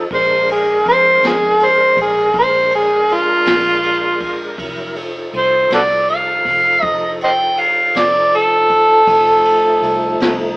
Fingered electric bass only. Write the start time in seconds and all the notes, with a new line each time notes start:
0.11 A#1
0.86 F2
1.23 F2
1.97 A#1
2.34 A#1
3.47 A#1
4.58 F1
5.33 C2
5.70 C2
6.46 F1
6.83 F1
7.95 F1
9.07 F1
9.82 C2
10.20 C2